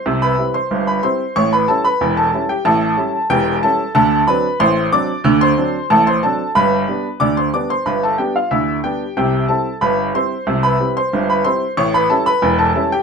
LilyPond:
<<
  \new Staff \with { instrumentName = "Upright piano" } { \time 2/4 \key c \major \tempo 4 = 92 <c'' c'''>16 <b' b''>8 <c'' c'''>8 <b' b''>16 <c'' c'''>8 | <cis'' cis'''>16 <b' b''>16 <a' a''>16 <b' b''>8 <a' a''>8 <g' g''>16 | <a' a''>4 <g' g''>8 <a' a''>8 | <a' a''>8 <b' b''>8 <c'' c'''>8 <d'' d'''>8~ |
<d'' d'''>16 <c'' c'''>8. <a' a''>16 <c'' c'''>16 <a' a''>8 | <b' b''>4 <d'' d'''>16 <c'' c'''>16 <d'' d'''>16 <c'' c'''>16 | <b' b''>16 <a' a''>16 <g' g''>16 <f' f''>16 <e' e''>8 <g' g''>8 | <g' g''>8 <a' a''>8 <b' b''>8 <c'' c'''>8~ |
<c'' c'''>16 <b' b''>8 <c'' c'''>8 <b' b''>16 <c'' c'''>8 | <cis'' cis'''>16 <b' b''>16 <a' a''>16 <b' b''>8 <a' a''>8 <g' g''>16 | }
  \new Staff \with { instrumentName = "Upright piano" } { \clef bass \time 2/4 \key c \major <c, c>8 <g c' e'>8 <g,, g,>8 <g c' e'>8 | <a,, a,>8 <g cis' e'>8 <e,, e,>8 <g cis' e'>8 | <a,, a,>8 <g cis' e'>8 <e,, e,>8 <g cis' e'>8 | <d, d>8 <fis c' d'>8 <a,, a,>8 <fis c' d'>8 |
<d, d>8 <fis c' d'>8 <a,, a,>8 <fis c' d'>8 | <g,, g,>8 <g b d'>8 <d, d>8 <g b d'>8 | <g,, g,>8 <g b d'>8 <d, d>8 <g b d'>8 | <c, c>8 <g c' e'>8 <g,, g,>8 <g c' e'>8 |
<c, c>8 <g c' e'>8 <g,, g,>8 <g c' e'>8 | <a,, a,>8 <g cis' e'>8 <e,, e,>8 <g cis' e'>8 | }
>>